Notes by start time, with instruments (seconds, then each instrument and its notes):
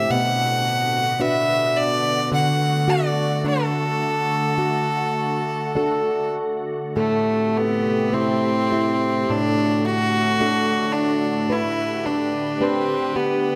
Already playing: steel-string acoustic guitar C4 G4, fiddle E5
0.10 steel-string acoustic guitar B2, ambient pad D3 B3 F#4, fiddle F#5
1.20 steel-string acoustic guitar D4 F#4 B4, fiddle E5
1.77 fiddle D5
2.32 steel-string acoustic guitar D3, ambient pad A3, fiddle F#5
2.88 steel-string acoustic guitar F#4, fiddle D5
3.44 steel-string acoustic guitar D4, fiddle A4
4.58 steel-string acoustic guitar F#4
5.75 steel-string acoustic guitar D4 F#4 A4
6.94 steel-string acoustic guitar A2 A4, ambient pad C3 A3 G4, fiddle A3
7.57 fiddle B3
8.13 steel-string acoustic guitar C4 E4 A4, fiddle C4
8.72 steel-string acoustic guitar E4
9.29 ambient pad A2 D3 A3 F#4, steel-string acoustic guitar A2, fiddle D4
9.86 fiddle F#4
10.40 steel-string acoustic guitar D4 F#4 A4
10.93 fiddle D4
11.50 fiddle E4, ambient pad G4 B4, steel-string acoustic guitar B4
12.06 fiddle D4, steel-string acoustic guitar D4
12.61 fiddle C4, steel-string acoustic guitar D4 G4 B4
13.16 fiddle B3, steel-string acoustic guitar G4